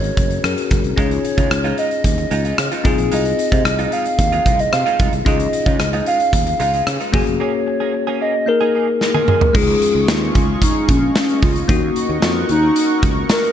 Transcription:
Already playing: G#1 C#4 F#4 G#4 A#4 C#5
0.04 closed hi-hat
0.17 F#1, kick, closed hi-hat
0.31 closed hi-hat
0.44 F#2 C#4 F#4 G#4 A#4, cross-stick, closed hi-hat
0.58 closed hi-hat
0.71 F#1, kick, closed hi-hat
0.84 C2, closed hi-hat
0.97 C#2 G#3 C#4 D#4 F4 G#4 C#5, kick, closed hi-hat
1.11 muted clean electric guitar stroke, closed hi-hat
1.24 muted clean electric guitar stroke, closed hi-hat
1.37 C#3 G#3 D#4 F4, kick, closed hi-hat
1.51 C#2, muted clean electric guitar stroke, cross-stick, closed hi-hat
1.64 G#3 D#4 F4, closed hi-hat
1.78 G#3 D#4 F4 D#5, closed hi-hat
1.91 closed hi-hat
2.04 D#2 D#5, muted clean electric guitar stroke, kick, closed hi-hat
2.18 muted clean electric guitar stroke, closed hi-hat
2.31 C#2 G#3 D#4 F4, closed hi-hat
2.45 G#3 D#4 F4, closed hi-hat
2.58 C#3, muted clean electric guitar stroke, cross-stick, closed hi-hat
2.72 G#3 D#4 F4, closed hi-hat
2.84 C2 G#3 C4 D#4 F4 G#4, kick, closed hi-hat
2.98 A#1, muted clean electric guitar stroke, closed hi-hat
3.12 C2 G#3 D#4 F4 D#5, closed hi-hat
3.25 muted clean electric guitar stroke, closed hi-hat
3.39 muted clean electric guitar stroke, closed hi-hat
3.52 C3 G#3 D#4 F4, kick, closed hi-hat
3.65 C2, muted clean electric guitar stroke, cross-stick, closed hi-hat
3.79 G#3 D#4 F4, closed hi-hat
3.92 G#3 D#4 F4 F5, closed hi-hat
4.05 F5, muted clean electric guitar stroke, closed hi-hat
4.19 D#2, muted clean electric guitar stroke, kick, closed hi-hat
4.32 G#3 D#4 F4, closed hi-hat
4.46 C2 G#3 D#4 F4, kick, closed hi-hat
4.59 D#5, muted clean electric guitar stroke, closed hi-hat
4.73 C3 F5, muted clean electric guitar stroke, cross-stick, closed hi-hat
4.86 G#3 D#4 F4, closed hi-hat
4.99 C2 G#3 D#4 F4, kick, closed hi-hat
5.13 C2, muted clean electric guitar stroke, closed hi-hat
5.25 C#2 G#3 C#4 D#4 F4 G#4 D#5, kick, closed hi-hat
5.40 muted clean electric guitar stroke, closed hi-hat
5.53 muted clean electric guitar stroke, closed hi-hat
5.66 C#3 G#3 D#4 F4, kick, closed hi-hat
5.79 C#2, muted clean electric guitar stroke, cross-stick, closed hi-hat
5.93 G#3 D#4 F4, closed hi-hat
6.06 G#3 D#4 F4 F5, closed hi-hat
6.20 muted clean electric guitar stroke, closed hi-hat
6.33 D#2 F5, muted clean electric guitar stroke, kick, closed hi-hat
6.47 muted clean electric guitar stroke, closed hi-hat
6.60 C#2 G#3 D#4 F4, closed hi-hat
6.73 G#3 D#4 F4, closed hi-hat
6.87 C#3, muted clean electric guitar stroke, cross-stick, closed hi-hat
7.00 G#3 D#4 F4, closed hi-hat
7.12 F#1 A#3 C#4 F#4 G#4, kick, open hi-hat
7.27 F1, muted clean electric guitar stroke, closed hi-hat
7.40 A#3 C#4 G#4 C#5
7.54 muted clean electric guitar stroke
7.67 muted clean electric guitar stroke
7.80 A#3 C#4 G#4
7.94 muted clean electric guitar stroke
8.07 A#3 C#4 G#4
8.21 A#3 C#4 G#4 D#5
8.34 muted clean electric guitar stroke
8.46 A#3 D#4 G#4 A#4, muted clean electric guitar stroke
8.61 A#3 D#4 G#4
8.74 A#3 D#4 G#4
8.88 muted clean electric guitar stroke
9.01 A#4, muted clean electric guitar stroke, snare
9.14 A#3 D#4 G#4, high tom
9.28 A#3 D#4 G#4, mid tom
9.41 muted clean electric guitar stroke, floor tom
9.53 C#2 G#3 C#4 D#4 F4 G#4 D#5 F5 C#6, kick, crash
9.82 closed hi-hat
9.95 C#2
10.08 D#2 F4, snare, closed hi-hat, tambourine
10.35 C#2, kick, closed hi-hat
10.62 D#4, kick, closed hi-hat
10.88 A#1 C#4, kick, closed hi-hat
11.15 C#4, snare, closed hi-hat, tambourine
11.29 closed hi-hat
11.42 C#2 F4, kick, open hi-hat
11.56 closed hi-hat
11.68 D#2 A#3 C#4 D#4 F#4 A#4 F#5 C#6, kick, closed hi-hat
11.96 closed hi-hat
12.09 D#2
12.22 F2 F4, snare, closed hi-hat, tambourine
12.49 D#2 D#4, closed hi-hat
12.76 closed hi-hat
13.03 C#2, kick, closed hi-hat
13.29 A#4, snare, closed hi-hat, tambourine
13.43 closed hi-hat

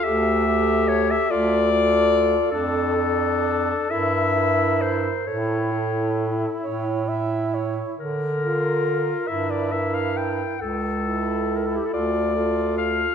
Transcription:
0.04 D2 G4 A4 E5
0.47 G4 A4
0.88 C#5
1.11 E5
1.29 D2 F4 A4 D5
1.71 F4 A4
2.51 F2 D4 A4
2.97 D4 A4
3.90 G2 E4 A#4 E5
4.35 E4 A#4
4.82 C5
5.27 A2 E4 A4 C#5
5.72 E4 A4
6.62 A2 C#5
7.06 E4 E5
7.54 C#5
7.98 D3 A#4
8.41 F4 A#4
9.28 G2 E4 A#4 E5
9.51 D5
9.72 E4 A#4 E5
9.95 F5
10.17 G5
10.59 C#2 A4
11.04 E4 A4
11.56 A#4
11.67 A4
11.77 G4
11.86 A4
11.92 D2 F4 A4 D5
12.35 F4 A4
12.78 F5

